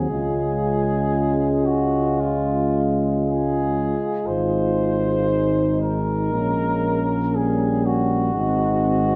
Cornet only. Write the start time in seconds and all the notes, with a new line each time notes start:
Already playing: G#4
1.66 F#4
2.20 F4
3.25 G#4
4.27 C5
5.81 A#4
7.35 G#4
7.86 F#4